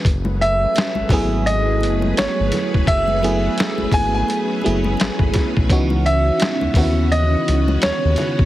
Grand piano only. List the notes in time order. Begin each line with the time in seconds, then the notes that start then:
0.41 E5
1.46 D#5
2.18 C#5
2.88 E5
3.94 G#5
4.15 G#5
6.06 E5
7.12 D#5
7.83 C#5